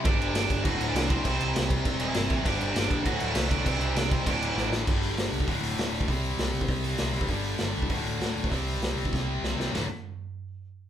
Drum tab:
CC |x-x-x-x-x-x-x-x-|x-x-x-x-x-x-x-x-|x-x-x-x-x-x-x-x-|x-x-x-x-x-x-----|
RD |----------------|----------------|----------------|----------------|
HH |----------------|----------------|----------------|----------------|
SD |----o-------o---|----o-------o---|----o-------o---|----o-------o-o-|
FT |----------------|----------------|----------------|----------------|
BD |o-----o-o-----o-|o-----o-o-----o-|o-----o-o-----o-|o-----o-o-------|

CC |x---------------|----------------|----------------|----------------|
RD |----------------|----------------|----------------|----------------|
HH |--o-o-o-o-o-o-o-|o-o-o-o-o-o-o-o-|o-o-o-o-o-o-o-o-|o-o-o-o---------|
SD |----o-------o---|----o-------o---|----o-------o---|----o---o---o-o-|
FT |----------------|----------------|----------------|----------------|
BD |o------oo------o|o------oo------o|o------oo------o|o------oo-------|

CC |----------------|
RD |b---------------|
HH |----------------|
SD |o---------------|
FT |o---------------|
BD |----------------|